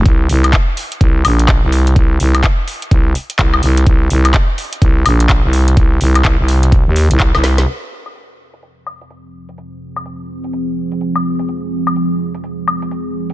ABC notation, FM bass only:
X:1
M:4/4
L:1/16
Q:"Swing 16ths" 1/4=126
K:Fm
V:1 name="FM bass" clef=bass
C,,2 C,,2 z4 C,,2 B,,,3 C,,3 | C,,2 C,,2 z4 C,,2 z2 C,,2 C,,2 | C,,2 C,,2 z4 C,,2 B,,,3 C,,3 | C,,2 C,,2 C,, C,,4 E,,2 C,,2 C,,3 |
z16 | z16 | z16 |]